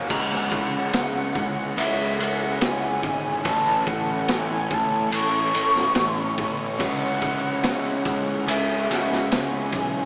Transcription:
0.08 picked electric bass C#2, overdriven electric guitar C#3 G#3 C#4 E4, string section E4 G#4 C#5, flute F#5, kick, crash
0.32 snare
0.52 picked electric bass C#2, kick, ride
0.93 picked electric bass C#2, snare, ride
1.35 picked electric bass C#2, kick, ride
1.76 picked electric bass C#2, overdriven electric guitar C#3 G#3 C#4 E4, flute E5, ride
2.19 picked electric bass C#2, flute F#5, ride
2.61 picked electric bass C#2, flute G#5, snare, ride
3.03 picked electric bass G#1, kick, ride
3.44 picked electric bass A1, overdriven electric guitar A2 E3 A3 C#4 E4, string section A4, flute A5, kick, ride
3.87 picked electric bass A1, flute F#5, kick, ride
4.28 picked electric bass A1, flute G#5, snare, ride
4.71 picked electric bass A1, flute A5, kick, ride
5.11 picked electric bass A1, overdriven electric guitar A2 E3 A3 C#4 E4, flute C#6, ride
5.54 picked electric bass A1, ride
5.75 snare
5.95 picked electric bass A1, snare, ride
6.38 picked electric bass A1, kick, ride
6.79 picked electric bass C#2, overdriven electric guitar C#3 G#3 C#4 E4, string section E4 G#4, flute F#5, kick, ride
7.22 picked electric bass C#2, kick, ride
7.63 picked electric bass C#2, snare, ride
8.05 picked electric bass C#2, kick, ride
8.47 picked electric bass C#2, overdriven electric guitar C#3 G#3 C#4 E4, flute E5, ride
8.89 picked electric bass C#2, flute F#5, snare, ride
9.12 snare
9.30 picked electric bass C#2, flute G#5, snare, ride
9.72 picked electric bass B1, kick, ride

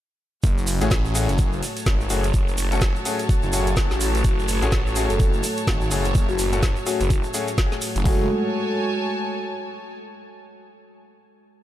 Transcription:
0.43 detuned saw bass F#1, analog synth pad A3 F#4 A4, string section F#4, kick, closed hi-hat, shaker
0.58 shaker
0.67 open hi-hat, shaker
0.78 detuned saw bass A1, grand piano A3 C#4 F#4 G#4, string section C#5, closed hi-hat, shaker
0.91 kick, snare, closed hi-hat, shaker
1.01 string section A5
1.05 shaker
1.15 grand piano A3 C#4 F#4 G#4, open hi-hat, shaker
1.29 detuned saw bass F#1, closed hi-hat, shaker
1.38 kick, closed hi-hat, shaker
1.53 shaker
1.63 open hi-hat, shaker
1.77 closed hi-hat, shaker
1.86 detuned saw bass G#1, kick, snare, closed hi-hat, shaker
2.01 shaker
2.10 detuned saw bass F#1, grand piano A3 C#4 F#4 G#4, open hi-hat, shaker
2.23 closed hi-hat, shaker
2.34 detuned saw bass F#1, kick, closed hi-hat, shaker
2.48 shaker
2.58 detuned saw bass F#1, open hi-hat, shaker
2.72 grand piano A3 C#4 F#4 A4, closed hi-hat, shaker
2.81 kick, snare, closed hi-hat, shaker
2.96 shaker
3.05 grand piano A3 C#4 F#4 G#4, open hi-hat, shaker
3.19 closed hi-hat, shaker
3.29 kick, closed hi-hat, shaker
3.43 detuned saw bass F#1, shaker
3.53 grand piano A3 C#4 F#4 G#4, open hi-hat, shaker
3.67 closed hi-hat, shaker
3.77 kick, snare, closed hi-hat, shaker
3.91 detuned saw bass A1, snare, shaker
4.01 open hi-hat, shaker
4.15 closed hi-hat, shaker
4.24 detuned saw bass F#1, kick, closed hi-hat, shaker
4.39 shaker
4.48 open hi-hat, shaker
4.62 detuned saw bass A1, grand piano A3 C#4 F#4 G#4, closed hi-hat, shaker
4.72 kick, snare, closed hi-hat, shaker
4.87 shaker
4.96 grand piano A3 C#4 F#4 G#4, open hi-hat, shaker
5.10 detuned saw bass F#1, marimba A4, closed hi-hat, shaker
5.20 kick, closed hi-hat, shaker
5.33 shaker
5.43 open hi-hat, shaker
5.57 closed hi-hat, shaker
5.67 detuned saw bass G#1, kick, snare, closed hi-hat, shaker
5.81 shaker
5.91 detuned saw bass F#1, grand piano A3 C#4 F#4 G#4, open hi-hat, shaker
6.05 closed hi-hat, shaker
6.15 detuned saw bass F#1, kick, closed hi-hat, shaker
6.29 marimba F#4, shaker
6.39 detuned saw bass F#1, marimba F#4, open hi-hat, shaker
6.52 grand piano A3 C#4 F#4 A4, closed hi-hat, shaker
6.63 kick, snare, closed hi-hat, shaker
6.76 shaker
6.86 grand piano A3 C#4 F#4 G#4, marimba F#4, open hi-hat, shaker
7.00 detuned saw bass F#1, closed hi-hat, shaker
7.10 kick, closed hi-hat, shaker
7.23 shaker
7.34 grand piano A3 C#4 F#4 G#4, open hi-hat, shaker
7.48 closed hi-hat, shaker
7.58 kick, snare, closed hi-hat, shaker
7.72 snare, shaker
7.81 open hi-hat, shaker
7.96 detuned saw bass F#1, closed hi-hat, shaker
8.05 detuned saw bass F#1, analog synth pad G#3 F#4 A4, grand piano A3 C#4 F#4 G#4, string section F#4, kick, open hi-hat
8.14 string section C#5
8.22 string section G#5
8.27 string section A5

